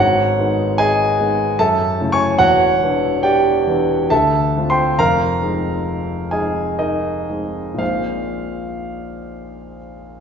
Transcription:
0.00 0.36 G#1 medium
0.00 0.36 G#2 medium
0.00 0.74 F#4 medium
0.00 0.73 C#5 medium
0.00 0.77 F#5 loud
0.39 1.15 G#3 soft
0.39 1.15 B3 soft
0.39 1.15 D#4 medium
0.78 1.55 G#4 medium
0.78 1.55 D#5 medium
0.78 1.59 G#5 loud
1.20 1.55 G#3 soft
1.20 1.55 B3 soft
1.20 1.56 D#4 soft
1.59 1.98 F#2 medium
1.59 2.09 A4 medium
1.59 2.09 E5 medium
1.59 2.12 A5 loud
2.01 2.36 C#3 soft
2.01 2.36 A3 soft
2.01 2.36 C#4 soft
2.01 2.36 E4 medium
2.12 2.38 C#5 medium
2.12 2.38 G#5 medium
2.12 2.39 C#6 loud
2.38 2.79 E1 medium
2.38 2.79 E2 medium
2.38 3.20 F#4 medium
2.38 3.20 C#5 medium
2.38 3.23 F#5 loud
2.82 3.64 E3 soft
2.82 3.64 B3 medium
2.82 3.64 D4 soft
2.82 3.64 E4 medium
3.23 4.08 G4 medium
3.23 4.08 D5 medium
3.23 4.11 G5 medium
3.67 4.07 E3 soft
3.67 4.08 B3 soft
3.67 4.08 D4 soft
3.67 4.08 E4 soft
4.10 4.54 D2 medium
4.10 4.66 A4 medium
4.10 4.65 E5 medium
4.10 4.69 A5 loud
4.57 4.95 A3 soft
4.57 4.95 C4 soft
4.57 4.95 D4 soft
4.57 4.95 F4 soft
4.70 4.97 C5 medium
4.70 4.97 G5 medium
4.70 4.98 C6 medium
4.98 5.39 F1 medium
4.98 5.40 F2 medium
4.98 6.28 A#4 medium
4.98 6.28 F5 medium
4.98 6.32 A#5 loud
5.42 6.28 G#3 soft
5.42 6.28 C4 soft
5.42 6.29 D#4 soft
6.31 7.25 G#3 soft
6.31 7.26 C4 soft
6.31 6.78 D#4 soft
6.31 6.77 G#4 medium
6.31 6.77 D#5 medium
6.31 6.80 G#5 medium
6.79 7.28 D#4 medium
6.79 7.76 A#4 medium
6.79 7.79 D#5 medium
7.29 7.74 G#3 soft
7.29 7.76 C4 soft
7.29 7.76 D#4 soft
7.74 10.20 A#2 soft
7.74 10.20 G#3 soft
7.74 10.20 A#3 soft
7.74 10.20 C4 soft
7.78 10.20 A#1 soft
7.78 10.20 D#4 soft
7.78 9.76 F4 medium
7.78 9.76 C5 medium
7.78 9.80 F5 medium

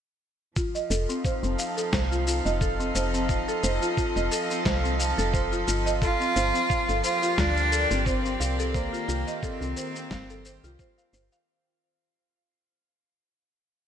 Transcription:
0.56 8.75 F3 medium
0.56 11.49 F4 medium
0.56 0.73 F4 medium
0.56 11.48 F5 medium
0.56 kick medium
0.56 shaker soft
0.75 0.89 D#5 medium
0.75 shaker soft
0.90 1.06 F1 loud
0.90 1.07 A4 medium
0.90 shaker medium
1.05 7.12 C4 medium
1.05 1.23 C4 medium
1.05 6.02 D#4 medium
1.10 shaker soft
1.25 1.42 C5 medium
1.25 kick medium
1.25 shaker soft
1.43 1.56 F1 medium
1.43 1.52 C4 medium
1.43 7.12 A4 medium
1.43 shaker soft
1.59 1.76 F5 medium
1.59 shaker medium
1.77 1.92 A4 medium
1.77 shaker soft
1.93 2.41 C2 medium
1.93 2.09 C5 medium
1.93 kick medium
1.93 snare medium
1.93 shaker soft
2.12 2.20 F4 medium
2.12 shaker soft
2.27 2.44 F4 medium
2.27 shaker medium
2.45 2.91 F1 medium
2.45 2.59 D#5 medium
2.45 shaker soft
2.61 2.78 A4 medium
2.61 kick loud
2.61 shaker soft
2.75 6.02 D#5 medium
2.80 2.94 C4 medium
2.80 shaker soft
2.95 3.43 F1 medium
2.95 3.13 C5 medium
2.95 shaker medium
3.14 3.23 C4 medium
3.14 shaker soft
3.29 3.46 F5 medium
3.29 kick medium
3.29 shaker soft
3.48 3.63 A4 medium
3.48 shaker soft
3.63 3.79 F1 loud
3.63 3.80 C5 medium
3.63 shaker medium
3.82 3.91 F4 medium
3.82 shaker soft
3.97 4.14 F4 medium
3.97 kick loud
3.97 shaker soft
4.16 4.29 F1 medium
4.16 4.30 D#5 medium
4.16 shaker soft
4.32 4.48 A4 medium
4.32 shaker medium
4.50 4.64 C4 medium
4.50 shaker soft
4.65 5.14 C2 medium
4.65 4.83 C5 medium
4.65 kick loud
4.65 snare medium
4.65 shaker soft
4.84 4.93 C4 medium
4.84 shaker soft
4.99 5.16 F5 medium
4.99 shaker medium
5.18 5.64 F1 loud
5.18 5.33 A4 medium
5.18 shaker soft
5.33 5.50 C5 medium
5.33 kick loud
5.33 shaker soft
5.52 5.61 F4 medium
5.52 shaker soft
5.67 6.16 G1 medium
5.67 5.84 F4 medium
5.67 shaker medium
5.86 6.00 D#5 medium
5.86 shaker soft
6.02 7.00 F4 loud
6.02 6.19 A4 medium
6.02 kick loud
6.02 shaker soft
6.20 6.34 C4 medium
6.20 shaker soft
6.36 6.52 G1 loud
6.36 6.54 C5 medium
6.36 shaker medium
6.54 6.63 C4 medium
6.54 shaker soft
6.63 11.48 A#3 medium
6.70 6.87 F5 medium
6.70 kick loud
6.70 shaker soft
6.88 7.02 G1 medium
6.88 7.03 A4 medium
6.88 shaker soft
7.04 7.40 F4 loud
7.04 7.21 C5 medium
7.04 shaker medium
7.14 11.47 G4 medium
7.23 7.32 F4 medium
7.23 9.85 D5 medium
7.23 shaker soft
7.38 7.86 D2 medium
7.38 8.08 D4 loud
7.38 7.55 F4 medium
7.38 kick medium
7.38 snare medium
7.38 shaker soft
7.56 7.71 D5 medium
7.56 shaker soft
7.72 7.89 A4 medium
7.72 shaker medium
7.91 8.37 G1 loud
7.91 8.05 C4 medium
7.91 shaker soft
8.06 8.76 C4 loud
8.06 8.24 C5 medium
8.06 kick loud
8.06 shaker soft
8.25 8.34 C4 medium
8.25 shaker soft
8.40 8.89 C2 medium
8.40 8.57 F5 medium
8.40 shaker medium
8.59 8.74 A4 medium
8.59 shaker soft
8.74 11.47 D#3 medium
8.74 9.44 A#3 loud
8.74 8.91 C5 medium
8.74 kick loud
8.74 shaker soft
8.93 9.02 F4 medium
8.93 shaker soft
9.08 9.24 C2 medium
9.08 9.25 F4 medium
9.08 shaker medium
9.27 9.41 D#5 medium
9.27 shaker soft
9.43 11.13 C4 loud
9.43 9.60 A4 medium
9.43 kick loud
9.43 shaker soft
9.61 9.74 C2 medium
9.61 9.75 C4 medium
9.61 shaker soft
9.66 11.47 C5 medium
9.77 9.95 C5 medium
9.77 shaker medium
9.95 10.04 C4 medium
9.95 shaker soft
10.11 10.59 G1 medium
10.11 10.28 F5 medium
10.11 kick loud
10.11 snare medium
10.11 shaker soft
10.30 10.45 A4 medium
10.30 shaker soft
10.45 10.62 C5 medium
10.45 shaker medium
10.64 10.77 C2 medium
10.64 10.78 F4 medium
10.64 shaker soft
10.79 10.96 C5 medium
10.79 kick loud
10.79 shaker soft
10.98 11.13 F5 medium
10.98 shaker soft
11.13 11.29 G1 medium
11.13 11.30 C5 medium
11.13 shaker medium
11.32 11.47 F5 loud
11.32 shaker soft

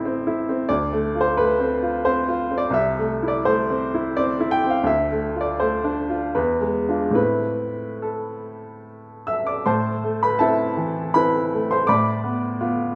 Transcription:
0.00 0.66 A1 soft
0.00 0.71 A3 soft
0.00 0.05 C4 soft
0.00 0.27 E4 soft
0.00 0.37 C5 medium
0.05 0.39 C4 soft
0.27 0.61 E4 soft
0.49 0.70 C4 soft
0.69 2.70 D2 soft
0.69 1.19 D5 medium
0.93 1.28 A3 soft
1.15 1.51 F4 soft
1.21 1.37 C5 medium
1.37 1.74 A3 soft
1.37 2.06 B4 medium
1.60 1.96 C4 soft
1.82 2.19 F4 soft
2.05 2.42 C4 soft
2.05 2.56 C5 medium
2.29 2.65 F4 soft
2.51 2.74 C4 soft
2.58 2.75 D5 medium
2.71 4.82 C2 soft
2.71 3.27 E5 medium
2.98 3.36 A3 soft
3.23 3.60 E4 soft
3.28 3.46 D5 medium
3.45 3.84 A3 soft
3.45 4.17 C5 medium
3.70 4.08 C4 soft
3.94 4.32 E4 soft
4.17 4.55 C4 soft
4.17 4.52 D5 medium
4.40 4.78 E4 soft
4.51 4.69 G5 medium
4.64 4.88 C4 soft
4.70 4.88 F5 soft
4.83 6.29 D2 soft
4.83 5.41 E5 medium
5.11 5.50 A3 soft
5.36 5.75 F4 soft
5.41 5.59 D5 soft
5.60 6.00 A3 soft
5.60 6.35 C5 medium
5.84 6.25 D4 soft
6.10 6.35 F4 soft
6.35 7.14 E2 soft
6.35 7.14 B4 soft
6.61 7.05 G#3 soft
6.89 7.14 D4 soft
6.89 7.14 F4 soft
7.11 9.60 A2 soft
7.11 9.61 A3 soft
7.11 9.62 C4 soft
7.11 9.62 E4 soft
7.15 8.02 B4 soft
8.02 8.86 A4 soft
9.27 9.47 E5 soft
9.27 9.48 E6 soft
9.47 9.66 D5 soft
9.47 9.67 D6 soft
9.66 11.85 A2 soft
9.66 10.19 C5 soft
9.66 10.19 A5 soft
9.66 10.23 C6 soft
10.04 10.64 A3 soft
10.23 10.41 B4 soft
10.23 10.42 B5 medium
10.39 10.75 C4 soft
10.39 10.75 E4 soft
10.39 11.12 A4 soft
10.39 11.11 E5 soft
10.39 11.15 A5 medium
10.77 11.37 E3 soft
11.14 11.49 C4 soft
11.14 11.49 E4 soft
11.14 11.67 B4 soft
11.14 11.70 B5 medium
11.53 11.90 A3 soft
11.71 11.89 C5 soft
11.71 11.89 C6 medium
11.87 12.95 A2 soft
11.87 12.95 D5 soft
11.87 12.95 B5 soft
11.87 12.95 D6 medium
12.24 12.59 B3 soft
12.61 12.94 B3 soft
12.61 12.94 F4 soft

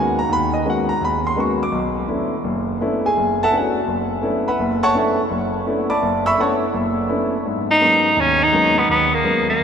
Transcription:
0.00 0.19 G#3 medium
0.00 0.19 A#3 soft
0.00 0.19 B3 medium
0.00 0.19 C#4 soft
0.00 0.19 F#4 medium
0.00 0.19 G#5 medium
0.19 0.30 A#5 medium
0.29 0.61 D#2 medium
0.29 0.61 D#3 medium
0.29 0.54 B5 loud
0.54 0.65 D#5 medium
0.65 0.90 G#3 soft
0.65 0.90 A#3 soft
0.65 0.90 B3 soft
0.65 0.90 C#4 soft
0.65 0.90 F#4 medium
0.70 0.91 F#5 medium
0.89 1.01 A#5 medium
1.01 1.32 D#2 medium
1.01 1.26 B5 medium
1.27 1.38 C6 medium
1.36 1.61 G#3 medium
1.36 1.62 A#3 soft
1.36 1.61 B3 medium
1.36 1.62 C#4 medium
1.36 1.62 F#4 medium
1.36 1.61 C#6 medium
1.63 2.07 D6 medium
1.72 2.03 B1 medium
2.08 2.33 A3 soft
2.08 2.33 B3 soft
2.08 2.33 C#4 soft
2.08 2.33 D4 soft
2.08 2.33 E4 medium
2.44 2.75 F#1 medium
2.81 3.05 A3 medium
2.81 3.05 B3 medium
2.81 3.05 C#4 medium
2.81 3.06 D4 medium
2.81 3.06 E4 medium
3.06 3.38 G#4 medium
3.06 3.38 G#5 medium
3.17 3.48 F#1 medium
3.43 3.54 A4 medium
3.43 3.54 E5 medium
3.43 3.54 F#5 medium
3.43 3.53 A5 loud
3.51 3.76 A3 medium
3.51 3.76 B3 soft
3.51 3.76 C#4 soft
3.51 3.77 D4 soft
3.51 3.77 E4 medium
3.57 3.78 F#4 medium
3.57 3.77 C#5 medium
3.57 3.78 D5 medium
3.57 3.77 F#5 medium
3.87 4.18 F#1 medium
4.22 4.47 A3 medium
4.22 4.48 B3 medium
4.22 4.48 C#4 medium
4.22 4.48 D4 medium
4.22 4.48 E4 medium
4.48 4.81 B4 medium
4.48 4.81 E5 medium
4.48 4.81 F#5 medium
4.48 4.81 B5 medium
4.59 4.90 F#1 medium
4.83 4.95 C#5 loud
4.83 4.95 F#5 medium
4.83 4.95 A5 loud
4.83 4.95 C#6 loud
4.94 5.19 A3 medium
4.94 5.19 B3 soft
4.94 5.19 C#4 soft
4.94 5.19 D4 soft
4.94 5.19 E4 medium
4.98 5.20 A4 medium
4.98 5.19 E5 medium
4.98 5.19 F#5 medium
4.98 5.19 A5 medium
5.31 5.62 F#1 medium
5.66 5.91 A3 medium
5.66 5.91 B3 medium
5.66 5.91 C#4 medium
5.66 5.91 D4 medium
5.66 5.91 E4 medium
5.90 6.23 D5 medium
5.90 6.23 A5 medium
5.90 6.23 B5 medium
5.90 6.23 D6 medium
6.02 6.33 F#1 medium
6.26 6.38 E5 loud
6.26 6.38 B5 loud
6.26 6.38 C#6 loud
6.26 6.38 E6 loud
6.37 6.62 A3 medium
6.37 6.63 B3 medium
6.37 6.62 C#4 medium
6.37 6.63 D4 soft
6.37 6.63 E4 medium
6.37 6.54 C#5 medium
6.37 6.54 F#5 medium
6.37 6.54 A5 medium
6.37 6.54 C#6 medium
6.74 7.05 F#1 medium
7.09 7.34 A3 medium
7.09 7.34 B3 medium
7.09 7.34 C#4 medium
7.09 7.34 D4 medium
7.09 7.34 E4 medium
7.45 7.76 G#2 medium
7.71 8.22 D#4 loud
7.81 8.06 F#3 soft
7.81 8.06 G#3 soft
7.81 8.06 A#3 soft
7.81 8.06 B3 soft
7.81 8.06 C#4 medium
8.17 8.48 D#2 medium
8.17 8.45 C#4 medium
8.43 8.80 D#4 loud
8.52 8.77 F#3 medium
8.52 8.77 G#3 soft
8.52 8.77 A#3 soft
8.52 8.78 B3 soft
8.52 8.78 C#4 medium
8.78 8.90 B3 medium
8.89 9.20 D#2 medium
8.89 9.16 B3 medium
9.14 9.49 A#3 medium
9.24 9.49 F#3 soft
9.24 9.49 G#3 soft
9.24 9.49 A#3 soft
9.24 9.49 B3 soft
9.24 9.49 C#4 medium
9.50 9.63 A#3 medium
9.60 9.63 D#2 medium

